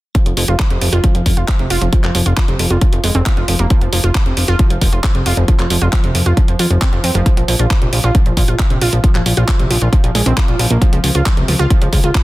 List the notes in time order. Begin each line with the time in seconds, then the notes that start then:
0.15 F3, kick, closed hi-hat
0.26 F1 F3, closed hi-hat
0.37 F1 F3, open hi-hat
0.48 F1 F4, closed hi-hat
0.59 F3, kick, clap, closed hi-hat
0.70 F1 C3, closed hi-hat
0.81 F1 F3, open hi-hat
0.93 F1 F4, closed hi-hat
1.04 F3, kick, closed hi-hat
1.15 F1 F3, closed hi-hat
1.26 F1 F3, kick, open hi-hat
1.37 F1 F4, closed hi-hat
1.48 F3, kick, clap, closed hi-hat
1.59 F1 C3, closed hi-hat
1.70 F1 F4, open hi-hat
1.81 F1 F3, closed hi-hat
1.93 F3, kick, closed hi-hat
2.04 F1 F3, clap, closed hi-hat
2.15 F1 F3, open hi-hat
2.26 F1 F4, closed hi-hat
2.37 F3, kick, clap, closed hi-hat
2.48 F1 C3, closed hi-hat
2.59 F1 F3, open hi-hat
2.70 F1 F4, closed hi-hat
2.81 F3, kick, closed hi-hat
2.93 F1 F3, closed hi-hat
3.04 F1 G#3, open hi-hat
3.15 F1 C4, closed hi-hat
3.26 F3, kick, clap, closed hi-hat
3.37 F1 F4, closed hi-hat
3.48 F1 F3, open hi-hat
3.59 F1 A#3, closed hi-hat
3.70 F3, kick, closed hi-hat
3.81 F1 F3, closed hi-hat
3.93 F1 F3, open hi-hat
4.04 F1 F4, closed hi-hat
4.15 F3, kick, clap, closed hi-hat
4.26 F1 C3, closed hi-hat
4.37 F1 F3, open hi-hat
4.48 F1 F4, closed hi-hat
4.59 F3, kick, closed hi-hat
4.70 F1 F3, closed hi-hat
4.81 F1 F3, kick, open hi-hat
4.92 F1 F4, closed hi-hat
5.04 F3, kick, clap, closed hi-hat
5.15 F1 C3, closed hi-hat
5.26 F1 F4, open hi-hat
5.37 F1 F3, closed hi-hat
5.48 F3, kick, closed hi-hat
5.59 F1 F3, clap, closed hi-hat
5.70 F1 F3, open hi-hat
5.82 F1 F4, closed hi-hat
5.93 F3, kick, clap, closed hi-hat
6.04 F1 C3, closed hi-hat
6.15 F1 F3, open hi-hat
6.26 F1 F4, closed hi-hat
6.37 F3, kick, closed hi-hat
6.48 F1 F3, closed hi-hat
6.59 F2 F4, open hi-hat
6.70 F1 F3, closed hi-hat
6.82 C4, kick, clap, closed hi-hat
6.93 F1 F3, closed hi-hat
7.04 F2 C4, open hi-hat
7.15 F1 F3, closed hi-hat
7.26 F3, kick, closed hi-hat
7.37 A#1 F3, closed hi-hat
7.48 A#1 F3, open hi-hat
7.59 A#1 F4, closed hi-hat
7.70 F3, kick, clap, closed hi-hat
7.82 A#1 C3, closed hi-hat
7.93 A#1 F3, open hi-hat
8.04 A#1 F4, closed hi-hat
8.15 F3, kick, closed hi-hat
8.26 A#1 F3, closed hi-hat
8.37 A#1 F3, kick, open hi-hat
8.48 A#1 F4, closed hi-hat
8.59 F3, kick, clap, closed hi-hat
8.70 A#1 C3, closed hi-hat
8.81 A#1 F4, open hi-hat
8.93 A#1 F3, closed hi-hat
9.04 F3, kick, closed hi-hat
9.15 A#1 F3, clap, closed hi-hat
9.26 A#1 F3, open hi-hat
9.37 A#1 F4, closed hi-hat
9.48 F3, kick, clap, closed hi-hat
9.59 A#1 C3, closed hi-hat
9.70 A#1 F3, open hi-hat
9.82 A#1 F4, closed hi-hat
9.93 F3, kick, closed hi-hat
10.04 A#1 F3, closed hi-hat
10.15 A#1 G#3, open hi-hat
10.26 A#1 C4, closed hi-hat
10.37 F3, kick, clap, closed hi-hat
10.48 A#1 F4, closed hi-hat
10.59 A#1 F3, open hi-hat
10.70 A#1 A#3, closed hi-hat
10.81 F3, kick, closed hi-hat
10.93 C#2 F3, closed hi-hat
11.04 C#2 F3, open hi-hat
11.15 C#2 F4, closed hi-hat
11.26 F3, kick, clap, closed hi-hat
11.37 C#2 C3, closed hi-hat
11.48 C#2 F3, open hi-hat
11.59 C#2 F4, closed hi-hat
11.70 F3, kick, closed hi-hat
11.82 C#2 F3, closed hi-hat
11.93 C#2 F3, kick, open hi-hat
12.04 C#2 F4, closed hi-hat
12.15 F3, kick, clap, closed hi-hat